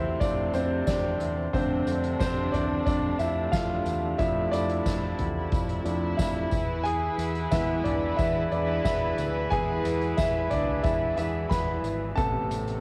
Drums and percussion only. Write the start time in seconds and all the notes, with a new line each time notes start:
0.21 kick, closed hi-hat, tambourine
0.53 closed hi-hat, tambourine
0.87 kick, snare, closed hi-hat, tambourine
1.20 closed hi-hat, tambourine
1.54 kick, closed hi-hat, tambourine
1.87 closed hi-hat, tambourine
2.04 closed hi-hat
2.20 kick, snare, closed hi-hat, tambourine
2.54 closed hi-hat, floor tom
2.87 kick, closed hi-hat, tambourine
3.19 closed hi-hat, tambourine
3.53 kick, snare, closed hi-hat, tambourine
3.86 closed hi-hat, tambourine
4.19 kick, closed hi-hat, tambourine
4.53 closed hi-hat, tambourine
4.70 closed hi-hat
4.86 kick, snare, closed hi-hat, tambourine
5.19 closed hi-hat, floor tom
5.52 kick, closed hi-hat, tambourine
5.69 closed hi-hat
5.86 closed hi-hat, tambourine
6.19 kick, snare, closed hi-hat, tambourine
6.51 kick, closed hi-hat, tambourine
6.85 closed hi-hat
7.19 closed hi-hat, tambourine
7.35 closed hi-hat
7.52 kick, snare, closed hi-hat, tambourine
7.85 closed hi-hat, floor tom
8.19 kick, closed hi-hat, tambourine
8.52 closed hi-hat, tambourine
8.85 kick, snare, closed hi-hat, tambourine
9.18 closed hi-hat, tambourine
9.52 kick, closed hi-hat
9.85 closed hi-hat, tambourine
10.02 closed hi-hat
10.18 kick, snare, closed hi-hat, tambourine
10.51 closed hi-hat, floor tom, tambourine
10.68 floor tom
10.84 kick, closed hi-hat, tambourine
11.18 closed hi-hat, tambourine
11.51 kick, snare, closed hi-hat, tambourine
11.84 closed hi-hat, tambourine
12.18 kick, closed hi-hat, tambourine
12.51 closed hi-hat, tambourine
12.68 closed hi-hat